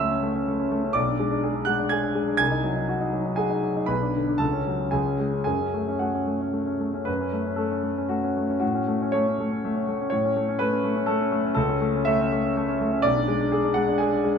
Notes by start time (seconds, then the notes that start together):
Already playing: C#2 C#4 A4 E5 A5 E6
0.00 A3
0.11 C#4
0.23 A3
0.35 C#4
0.48 A3
0.59 C#4
0.71 A3
0.84 C#4
0.93 B1 D5 D6
1.08 D4
1.19 G#3
1.32 D4
1.44 G#4
1.55 D4
1.65 G#3 F#5 F#6
1.79 D4
1.89 G#4 G#5 G#6
2.04 D4
2.15 G#3
2.27 D4
2.37 C2 G#5 G#6
2.51 D#4
2.63 F#3
2.76 D#4
2.89 F#4
3.01 D#4
3.13 F#3
3.25 D#4
3.36 F#4 G#4 G#5
3.50 D#4
3.63 F#3
3.76 D#4
3.86 B1 B4 B5
4.02 D4
4.14 D3
4.27 D4
4.38 C#2 A4 A5
4.52 C#4
4.67 F#3
4.79 C#4
4.91 C#2 G#4 G#5
5.06 C#4
5.19 G#3
5.33 C#4
5.44 F#2 G#4 G#5
5.61 C#4
5.74 A3
5.88 C#4
5.99 A3 F#4 F#5
6.14 C#4
6.27 A3
6.41 C#4
6.53 A3
6.66 C#4
6.80 A3
6.94 C#4
7.05 F#2 B4
7.20 C#4
7.33 A3
7.46 C#4
7.56 A3 A4
7.71 C#4
7.84 A3
7.98 C#4
8.09 A3 F#4
8.23 C#4
8.37 A3
8.49 C#4
8.60 A2 F#4
8.75 C#4
8.88 A3
9.02 C#4
9.12 A3 C#5
9.27 C#4
9.40 A3
9.51 C#4
9.64 A3
9.76 C#4
9.88 A3
10.01 C#4
10.10 A2 C#5
10.24 C#4
10.36 A3
10.48 C#4
10.59 A3 B4
10.72 C#4
10.84 A3
10.96 C#4
11.06 A3 A4
11.20 C#4
11.32 A3
11.44 C#4
11.54 C#2 A4
11.69 C#4
11.81 A3
11.95 C#4
12.05 A3 E5
12.21 C#4
12.32 A3
12.45 C#4
12.57 A3
12.68 C#4
12.81 A3
12.92 C#4
13.02 B1 D5
13.16 D4
13.28 G#3
13.40 D4
13.52 G#4
13.64 D4
13.74 G#3 F#5
13.88 D4
13.98 G#4 G#5
14.12 D4
14.24 G#3